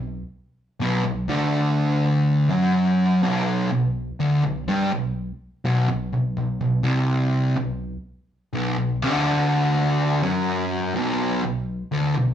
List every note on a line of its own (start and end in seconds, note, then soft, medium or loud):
0.00 0.22 B1 medium
0.80 1.03 B1 medium
0.80 1.04 B2 medium
1.05 1.28 B1 medium
1.28 2.48 D2 medium
1.28 2.49 D3 medium
2.49 3.21 F#2 loud
2.49 3.22 F#3 loud
3.23 3.70 B1 medium
3.23 3.70 B2 medium
3.72 4.10 B1 medium
4.20 4.42 D2 medium
4.20 4.43 D3 loud
4.44 4.67 B1 medium
4.68 4.91 G2 medium
4.68 4.91 G3 loud
4.92 5.31 B1 medium
5.65 5.87 B1 medium
5.65 5.88 B2 loud
5.88 6.11 B1 medium
6.13 6.36 B1 medium
6.37 6.59 B1 medium
6.61 6.83 B1 medium
6.83 7.55 C2 medium
6.83 7.56 C3 loud
7.57 7.96 B1 medium
8.53 8.77 B1 medium
8.53 8.77 B2 medium
8.78 9.02 B1 medium
9.02 10.22 D2 medium
9.02 10.22 D3 loud
10.23 10.94 F#2 medium
10.23 10.95 F#3 medium
10.95 11.42 B1 loud
10.95 11.43 B2 loud
11.44 11.83 B1 medium
11.92 12.14 D2 medium
11.92 12.15 D3 loud
12.15 12.34 B1 medium